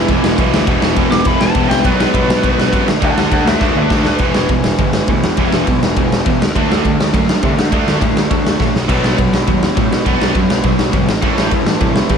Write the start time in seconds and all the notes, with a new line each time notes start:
Already playing: E2 B2 E3
0.08 E1 E2 B2 E3, kick, ride
0.24 E1, snare
0.38 B1 E2 B2 E3, kick, ride
0.53 D2, snare
0.67 E1 E2 B2 E3, kick, ride
0.82 E1, snare
0.96 E1 E2 B2 E3, kick, ride
1.11 E1 D6, snare
1.25 E1 E2 B2 E3 B5, kick, ride
1.40 E1 A5, snare
1.55 E1 E2 B2 E3, kick, ride
1.69 C2 G5, snare
1.84 B1 B2 F#3 B3 B4, kick, ride
2.00 B4, snare
2.14 B1 B2 F#3 B3, kick, ride
2.28 B1, snare
2.43 B1 B2 F#3 B3, kick, ride
2.57 B1, snare
2.72 F#2 B2 F#3 B3, kick, ride
2.86 D2 D3 A3, snare
2.90 D4
3.02 D2 D3 A3 D4 F#5, kick, ride
3.06 A5
3.15 D2 F#5, snare
3.20 A5
3.32 D2 D3 A3 D4 F#5 A5, kick, ride
3.45 D2 B4 E5, snare
3.61 D2 D3 A3 D4 B4 E5, kick, snare
3.75 D2 B4 E5
3.90 D2 D3 A3 D4 B4 D5, kick, snare
4.04 D2 B4, snare
4.19 E1 E2 B2 E3, kick, ride
4.34 E1, snare
4.49 E1 E2 B2 E3, kick, ride
4.64 E1, snare
4.78 G1 E2 B2 E3, kick, ride
4.93 snare
5.08 D2 E2 B2 E3, kick, ride
5.23 E2, snare
5.37 E1 E2 B2 E3, kick, ride
5.52 E1, snare
5.65 B1 E2 B2 E3, kick, ride
5.83 E1, snare
5.97 E1 E2 B2 E3, kick, ride
6.11 E1, snare
6.25 E1 E2 B2 E3, kick, ride
6.40 D2, snare
6.55 D2 D3 A3 D4, kick, ride
6.70 D2, snare
6.84 D2 D3 A3 D4, kick, ride
7.00 D2, snare
7.14 F#2 D3 A3 D4, kick, ride
7.29 snare
7.43 C3 D3 A3 D4, kick, ride
7.57 D3, snare
7.72 D2 D3 A3 D4, kick, ride
7.87 D2, snare
8.01 A2 D3 A3 D4, kick, ride
8.15 D2, snare
8.31 D2 D3 A3 D4, kick, ride
8.45 D2, snare
8.59 A#1 D3 A3 D4, kick, snare
8.75 B1, snare
8.88 B1 B2 F#3 B3, kick, ride, crash
9.03 B1, snare
9.17 B1 B2 F#3 B3, kick, ride
9.32 B1, snare
9.47 D#2 B2 F#3 B3, kick, ride
9.63 snare
9.76 A2 B2 F#3 B3, kick, ride
9.91 B2, snare
10.06 B1 B2 F#3 B3, kick, ride
10.22 B1, snare
10.34 F#2 B2 F#3 B3, kick, ride
10.50 B1, snare
10.63 B1 B2 F#3 B3, kick, ride
10.79 B1, snare
10.92 G1 B2 F#3 B3, kick, ride
11.08 A1, snare
11.22 A1 A2 E3 A3, kick, ride
11.38 A1, snare
11.51 A1 A2 E3 A3, kick, ride
11.66 A1, snare
11.80 C2 A2 E3 A3, kick, ride
11.96 snare
12.09 G2 A2 E3 A3, kick, ride